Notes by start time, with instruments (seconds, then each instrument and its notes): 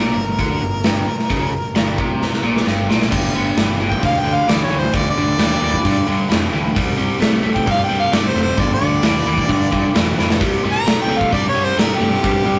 Already playing: picked electric bass A#1, overdriven electric guitar A#2, harmonica A#4
0.16 picked electric bass G1, overdriven electric guitar G2
0.38 picked electric bass D2, overdriven electric guitar D3, kick, open hi-hat
0.60 picked electric bass G1, overdriven electric guitar G2
0.84 picked electric bass G1, overdriven electric guitar G2, snare, open hi-hat
1.06 muted picked electric bass stroke, muted overdriven electric guitar stroke
1.19 snare
1.30 picked electric bass C#2, overdriven electric guitar C#3, kick, open hi-hat
1.74 picked electric bass G1, overdriven electric guitar G2, snare, open hi-hat
1.98 picked electric bass C2, overdriven electric guitar C3, kick
2.22 snare
2.33 snare
2.42 picked electric bass A#1, overdriven electric guitar A#2
2.56 snare
2.66 picked electric bass G1, overdriven electric guitar G2, snare
2.89 picked electric bass A#1, overdriven electric guitar A#2, snare
3.02 snare
3.11 picked electric bass G1, overdriven electric guitar G2 D3, kick, crash
3.34 picked electric bass G1, overdriven electric guitar G2 D3
3.57 picked electric bass G1, overdriven electric guitar G2 E3, snare, open hi-hat
3.80 overdriven electric guitar G2 E3
3.89 harmonica G5, kick
4.01 picked electric bass D2, overdriven electric guitar G2 D3, kick, open hi-hat
4.05 harmonica F5
4.20 picked electric bass D2, harmonica G5
4.24 overdriven electric guitar G2 D3
4.34 harmonica F5
4.47 picked electric bass D2, overdriven electric guitar G2 E3, harmonica D5, snare, open hi-hat
4.63 harmonica C#5
4.70 picked electric bass D2, overdriven electric guitar G2 E3
4.78 harmonica C5
4.93 picked electric bass D2, overdriven electric guitar G2 D3, harmonica D5, kick, open hi-hat
5.10 harmonica D5
5.15 picked electric bass D2, overdriven electric guitar G2 D3
5.38 picked electric bass D#2, overdriven electric guitar G2 E3, snare, open hi-hat
5.61 picked electric bass D#2, overdriven electric guitar G2 E3
5.74 kick
5.85 overdriven electric guitar G2 D3, picked electric bass G2, kick, open hi-hat
6.07 overdriven electric guitar G2 D3, picked electric bass G2
6.29 picked electric bass F2, overdriven electric guitar G2 E3, snare, open hi-hat
6.52 picked electric bass D2, overdriven electric guitar G2 E3
6.75 picked electric bass C2, overdriven electric guitar C3 G3, kick, open hi-hat
6.97 picked electric bass C2, overdriven electric guitar C3 G3
7.19 picked electric bass C2, overdriven electric guitar C3 A3, snare, open hi-hat
7.43 overdriven electric guitar C3 A3
7.55 harmonica G5, kick
7.66 picked electric bass G2, overdriven electric guitar C3 G3, kick, open hi-hat
7.71 harmonica F5
7.84 harmonica G5
7.89 picked electric bass G2, overdriven electric guitar C3 G3
8.00 harmonica F5
8.12 picked electric bass G2, overdriven electric guitar C3 A3, harmonica D5, snare, open hi-hat
8.29 harmonica C5
8.34 picked electric bass F1, overdriven electric guitar C3 A3, snare
8.42 harmonica C5
8.57 picked electric bass G1, overdriven electric guitar G2 D3, harmonica D5, kick, open hi-hat
8.74 harmonica D5
8.81 picked electric bass D2, overdriven electric guitar G2 D3
9.03 picked electric bass D#2, overdriven electric guitar G2 E3, snare, open hi-hat
9.25 picked electric bass D#2, overdriven electric guitar G2 E3
9.38 kick
9.48 overdriven electric guitar G2 D3, picked electric bass G2, kick, open hi-hat
9.71 overdriven electric guitar G2 D3, picked electric bass G2, kick
9.94 picked electric bass F2, overdriven electric guitar G2 E3, snare, open hi-hat
10.18 picked electric bass F2, overdriven electric guitar G2 E3, snare
10.30 snare
10.40 picked electric bass C2, overdriven electric guitar C3 G3, kick, open hi-hat
10.64 picked electric bass C2, overdriven electric guitar C3 G3
10.71 harmonica A#5
10.86 picked electric bass C2, overdriven electric guitar C3 A3, snare, open hi-hat
11.02 harmonica G5
11.08 overdriven electric guitar C3 A3
11.17 harmonica F5, kick
11.30 picked electric bass G2, overdriven electric guitar C3 G3, harmonica D5, kick, open hi-hat
11.49 harmonica C#5
11.54 picked electric bass G2, overdriven electric guitar C3 G3
11.64 harmonica C5
11.76 picked electric bass G2, overdriven electric guitar C3 A3, harmonica A#4, snare, open hi-hat
11.96 overdriven electric guitar C3 A3, harmonica G4
12.00 picked electric bass G2
12.14 snare
12.23 picked electric bass G2, overdriven electric guitar C3 G3, kick, open hi-hat
12.44 picked electric bass G2, overdriven electric guitar C3 G3